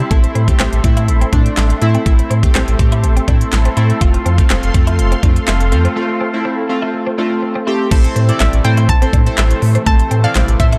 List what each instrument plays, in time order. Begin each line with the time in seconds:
Already playing: supersaw synth E5 C6
0.11 sub bass A1, synth keys A3 C4 E4, clean electric guitar A3, supersaw synth A4, kick, closed hi-hat
0.24 muted clean electric guitar stroke, closed hi-hat
0.35 sub bass A2, clean electric guitar C4, closed hi-hat
0.48 synth keys A3 C4 G4, kick, closed hi-hat
0.59 sub bass A1, clean electric guitar C4, snare, clap, closed hi-hat
0.72 sub bass A1, closed hi-hat
0.84 sub bass A2, synth keys A3 C4 E4, muted clean electric guitar stroke, kick, closed hi-hat
0.97 clean electric guitar E4, closed hi-hat
1.08 sub bass A1, muted clean electric guitar stroke, closed hi-hat
1.21 clean electric guitar C4, closed hi-hat
1.33 sub bass A2, synth keys A3 C4 D4, clean electric guitar D4, kick, closed hi-hat
1.46 closed hi-hat
1.57 sub bass A1, clean electric guitar E4, snare, clap, closed hi-hat
1.70 closed hi-hat
1.81 sub bass A2, synth keys A3 C4 E4, muted clean electric guitar stroke, closed hi-hat
1.95 clean electric guitar C4, closed hi-hat
2.06 sub bass A1, synth keys A3 C4 E4, clean electric guitar A3, kick, closed hi-hat
2.19 muted clean electric guitar stroke, closed hi-hat
2.30 sub bass A2, clean electric guitar C4, closed hi-hat
2.43 synth keys A3 C4 G4, kick, closed hi-hat
2.55 sub bass A1, clean electric guitar C4, snare, clap, closed hi-hat
2.68 sub bass A1, closed hi-hat
2.79 sub bass A2, synth keys A3 C4 G4, muted clean electric guitar stroke, kick, closed hi-hat
2.92 clean electric guitar E4, closed hi-hat
3.04 sub bass A1, muted clean electric guitar stroke, closed hi-hat
3.17 clean electric guitar C4, closed hi-hat
3.28 sub bass A2, synth keys A3 C4 E4, clean electric guitar D4, kick, closed hi-hat
3.41 closed hi-hat
3.52 sub bass A1, muted clean electric guitar stroke, snare, clap, closed hi-hat
3.65 clean electric guitar C4, closed hi-hat
3.77 sub bass A2, synth keys A3 C4 E4, clean electric guitar E4, closed hi-hat
3.90 closed hi-hat
4.01 sub bass F1, synth keys A3 C4 F4, clean electric guitar F4, supersaw synth F5 C6, kick, closed hi-hat
4.14 muted clean electric guitar stroke, closed hi-hat
4.26 sub bass F2, clean electric guitar C4, closed hi-hat
4.38 synth keys A3 C4 F4, kick, closed hi-hat
4.50 sub bass F1, clean electric guitar C4, snare, clap, closed hi-hat
4.63 sub bass F1, closed hi-hat
4.74 sub bass F2, synth keys A3 C4 F4, muted clean electric guitar stroke, kick, closed hi-hat
4.87 clean electric guitar E4, closed hi-hat
4.99 sub bass F1, muted clean electric guitar stroke, closed hi-hat
5.12 clean electric guitar C4, closed hi-hat
5.23 sub bass F2, synth keys A3 C4 F4, clean electric guitar D4, kick, closed hi-hat
5.36 closed hi-hat
5.47 sub bass F1, clean electric guitar E4, snare, clap, closed hi-hat
5.60 closed hi-hat
5.72 sub bass F2, synth keys A3 C4 F4, muted clean electric guitar stroke, closed hi-hat
5.85 clean electric guitar C4, closed hi-hat
5.96 synth keys A3 C4 F4, clean electric guitar A3
6.09 muted clean electric guitar stroke
6.21 clean electric guitar C4
6.33 synth keys A3 C4 E4
6.45 clean electric guitar C4
6.69 synth keys A3 C4 F4, muted clean electric guitar stroke
6.82 clean electric guitar E4
6.94 muted clean electric guitar stroke
7.07 clean electric guitar C4
7.18 synth keys A3 C4 F4, clean electric guitar D4
7.43 muted clean electric guitar stroke
7.55 clean electric guitar C4
7.67 synth keys A3 C4 G4, clean electric guitar E4
7.91 sub bass A1, supersaw synth C3 E3 A3, clean electric guitar A3, synth keys C4 E4 A4 C5, kick, closed hi-hat, crash
8.04 muted clean electric guitar stroke, closed hi-hat
8.16 sub bass A2, clean electric guitar C4, closed hi-hat
8.28 synth keys C4 E4 A4 D5, closed hi-hat
8.40 sub bass A1, clean electric guitar C4, synth pluck E5, snare, clap, closed hi-hat
8.53 sub bass A1, closed hi-hat
8.64 sub bass A2, synth keys C4 E4 A4 C5, synth pluck G5, muted clean electric guitar stroke, closed hi-hat
8.77 clean electric guitar E4, closed hi-hat
8.89 sub bass A1, synth pluck A5, muted clean electric guitar stroke, kick, closed hi-hat
9.02 synth keys C4 E4 A4 C5, clean electric guitar C4, closed hi-hat
9.13 sub bass A2, clean electric guitar D4, kick, closed hi-hat
9.26 synth keys C4 E4 A4 C5, closed hi-hat
9.38 sub bass A1, clean electric guitar E4, snare, clap, closed hi-hat
9.51 closed hi-hat
9.62 sub bass A2, muted clean electric guitar stroke, open hi-hat
9.75 clean electric guitar C4, closed hi-hat
9.86 sub bass A1, clean electric guitar A3, synth keys C4 E4 A4 C5, synth pluck A5, kick, closed hi-hat
9.99 muted clean electric guitar stroke, closed hi-hat
10.11 sub bass A2, clean electric guitar C4, closed hi-hat
10.24 synth keys C4 E4 A4 D5, synth pluck F5, closed hi-hat
10.35 sub bass A1, clean electric guitar C4, snare, clap, closed hi-hat
10.48 sub bass A1, closed hi-hat
10.60 sub bass A2, synth keys C4 E4 A4 C5, synth pluck E5, muted clean electric guitar stroke, kick, closed hi-hat
10.72 clean electric guitar E4, closed hi-hat